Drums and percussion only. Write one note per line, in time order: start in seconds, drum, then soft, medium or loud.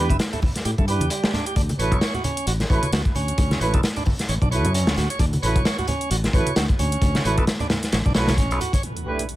0.10 kick medium
0.10 closed hi-hat medium
0.19 snare loud
0.19 closed hi-hat medium
0.19 closed hi-hat soft
0.33 closed hi-hat soft
0.33 low conga medium
0.42 kick medium
0.42 open hi-hat medium
0.42 high conga medium
0.42 low conga medium
0.56 snare soft
0.56 closed hi-hat medium
0.65 closed hi-hat medium
0.65 closed hi-hat soft
0.78 kick medium
0.78 closed hi-hat soft
0.88 closed hi-hat medium
1.01 closed hi-hat medium
1.01 high conga medium
1.10 closed hi-hat medium
1.10 closed hi-hat soft
1.24 snare loud
1.24 closed hi-hat soft
1.33 snare soft
1.33 closed hi-hat medium
1.33 low conga medium
1.46 closed hi-hat medium
1.56 kick loud
1.56 closed hi-hat medium
1.69 closed hi-hat soft
1.69 high conga medium
1.79 closed hi-hat medium
1.92 kick medium
1.92 closed hi-hat medium
2.01 snare loud
2.01 closed hi-hat soft
2.01 closed hi-hat medium
2.14 closed hi-hat soft
2.14 low conga medium
2.24 closed hi-hat medium
2.24 high conga medium
2.24 low conga medium
2.37 closed hi-hat medium
2.47 closed hi-hat soft
2.47 closed hi-hat medium
2.60 snare soft
2.60 closed hi-hat soft
2.70 kick medium
2.70 closed hi-hat medium
2.83 closed hi-hat medium
2.83 high conga medium
2.92 snare loud
2.92 closed hi-hat soft
2.92 closed hi-hat medium
3.05 kick medium
3.05 closed hi-hat soft
3.15 closed hi-hat medium
3.15 low conga medium
3.28 closed hi-hat medium
3.38 kick loud
3.38 closed hi-hat medium
3.51 snare medium
3.51 closed hi-hat soft
3.51 high conga medium
3.61 closed hi-hat medium
3.74 kick medium
3.74 closed hi-hat medium
3.83 snare loud
3.83 closed hi-hat soft
3.83 closed hi-hat medium
3.96 closed hi-hat soft
3.96 low conga medium
4.05 kick medium
4.05 open hi-hat medium
4.05 high conga medium
4.05 low conga medium
4.19 snare soft
4.19 closed hi-hat medium
4.29 closed hi-hat medium
4.42 kick medium
4.42 closed hi-hat soft
4.52 closed hi-hat medium
4.65 closed hi-hat medium
4.65 high conga medium
4.74 closed hi-hat soft
4.74 closed hi-hat loud
4.87 snare loud
4.87 closed hi-hat soft
4.97 snare soft
4.97 closed hi-hat medium
4.97 low conga medium
5.10 closed hi-hat medium
5.19 kick loud
5.19 closed hi-hat medium
5.33 closed hi-hat soft
5.33 high conga medium
5.43 closed hi-hat medium
5.56 kick loud
5.56 closed hi-hat medium
5.65 snare loud
5.65 closed hi-hat medium
5.65 closed hi-hat soft
5.79 closed hi-hat soft
5.79 low conga medium
5.87 closed hi-hat medium
5.87 high conga medium
5.87 low conga medium
6.01 closed hi-hat medium
6.11 closed hi-hat soft
6.11 closed hi-hat medium
6.24 snare soft
6.24 closed hi-hat soft
6.33 kick loud
6.33 closed hi-hat medium
6.46 closed hi-hat medium
6.46 high conga medium
6.56 snare loud
6.56 closed hi-hat loud
6.56 closed hi-hat soft
6.69 kick medium
6.69 closed hi-hat soft
6.79 closed hi-hat medium
6.79 low conga medium
6.92 closed hi-hat medium
7.02 kick loud
7.02 closed hi-hat medium
7.15 snare medium
7.15 closed hi-hat soft
7.15 high conga medium
7.25 closed hi-hat medium
7.38 kick medium
7.38 closed hi-hat medium
7.47 snare loud
7.47 closed hi-hat soft
7.47 closed hi-hat medium
7.60 closed hi-hat soft
7.60 low conga medium
7.70 snare loud
7.70 closed hi-hat medium
7.70 high conga medium
7.70 low conga medium
7.83 snare soft
7.83 closed hi-hat medium
7.92 snare loud
7.92 closed hi-hat medium
8.06 kick medium
8.06 closed hi-hat soft
8.14 snare loud
8.14 closed hi-hat medium
8.27 snare loud
8.27 closed hi-hat medium
8.27 high conga medium
8.38 kick medium
8.38 closed hi-hat medium
8.51 closed hi-hat soft
8.60 closed hi-hat medium
8.60 low conga medium
8.73 kick medium
8.73 closed hi-hat medium
8.83 closed hi-hat medium
8.97 closed hi-hat soft
9.19 closed hi-hat medium
9.29 closed hi-hat soft